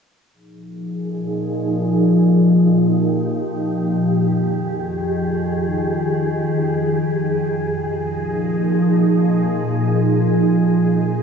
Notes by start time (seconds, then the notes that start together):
0.34 A#2 F3 D#4 G#4
2.16 G4
3.98 F2 D#3 G#4
7.61 A#2 F3 D#4